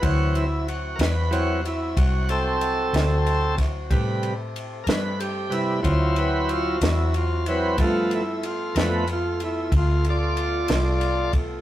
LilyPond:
<<
  \new Staff \with { instrumentName = "Horn section" } { \time 12/8 \key d \mixolydian \tempo 4. = 62 << { <fis e' fis'>1. | <a g' a'>2. <fis e' fis'>2. | <a f' a'>1. | } \\ { c'1.~ | c'2. c'2. | b1. | } >> }
  \new Staff \with { instrumentName = "Tonewheel organ" } { \time 12/8 \key d \mixolydian fis'8 e'8 fis'8 <bes' b'>8 fis'8 e'8 fis'8 <c' a'>2 r8 | r4. <bes' b'>8 g'8 e'8 f'8 b'8 f'8 e'8 f'8 b'8 | f'8 e'8 f'8 <bes' b'>8 f'8 e'8 f'8 <f' d''>2 r8 | }
  \new Staff \with { instrumentName = "Tonewheel organ" } { \clef bass \time 12/8 \key d \mixolydian <e fis c'>8 r4. <e fis c'>8 r2. r8 | <c g b'>8 r2 <c g b'>8 <fis c' e'>4. r4 <e fis c'>8 | <f a b>8 r4 <f a b>8 r1 | }
  \new Staff \with { instrumentName = "Fingered electric bass" } { \clef bass \time 12/8 \key d \mixolydian d,4. e,4. c,4. d,4. | a,4. g,4. d,4. e,4. | g,4. f,4. d,4. c,4. | }
  \new DrumStaff \with { instrumentName = "Drums" } \drummode { \time 12/8 <bd cymr>8 cymr8 cymr8 <cymr sn>8 cymr8 cymr8 <bd cymr>8 cymr8 cymr8 <cymr sn>8 cymr8 <bd cymr sn>8 | <bd cymr>8 cymr8 cymr8 <cymr sn>8 cymr8 cymr8 <bd cymr>8 cymr8 cymr8 <cymr sn>8 cymr8 cymr8 | <bd cymr>8 cymr8 cymr8 <cymr sn>8 cymr8 cymr8 <bd cymr>8 cymr8 cymr8 <cymr sn>8 cymr8 <bd cymr>8 | }
>>